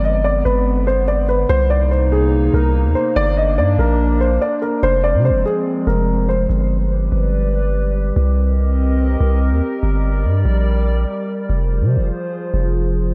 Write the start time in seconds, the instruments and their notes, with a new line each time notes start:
Already playing: 808-style bass G1, ambient pad D3 B3
0.04 grand piano D#5
0.24 grand piano D5
0.45 808-style bass G1, grand piano B4
0.87 grand piano C5
1.08 grand piano D5
1.29 grand piano B4
1.49 808-style bass C2, ambient pad C3 A#3 D#4, grand piano C5
1.70 grand piano D5
1.91 grand piano C5
2.12 grand piano G#4
2.54 808-style bass C2, grand piano A#4
2.85 808-style bass D#2
2.95 grand piano C5
3.16 808-style bass G1, ambient pad D4, grand piano D5
3.37 grand piano D#5
3.58 808-style bass G2, grand piano D5
3.79 808-style bass A#1, grand piano A#4
4.21 grand piano C5
4.42 grand piano D5
4.62 grand piano A#4
4.83 808-style bass F1, ambient pad F3 G#3 C4, grand piano C5
5.04 grand piano D5
5.14 808-style bass C3
5.25 grand piano C5
5.30 808-style bass F1
5.46 grand piano G#4
5.87 808-style bass F1, grand piano A#4
6.29 grand piano C5
6.50 808-style bass G1, ambient pad G3 G4 B4 D5
7.12 808-style bass G1
8.16 808-style bass C2, ambient pad C4 A#4 D#5
9.21 808-style bass C2
9.52 808-style bass D#2
9.83 808-style bass G1, ambient pad G3 D5
10.25 808-style bass G2
10.45 808-style bass A#1
11.50 808-style bass F1, ambient pad F3 F4 G#4 C5
11.81 808-style bass C3
11.97 808-style bass F1
12.54 808-style bass F1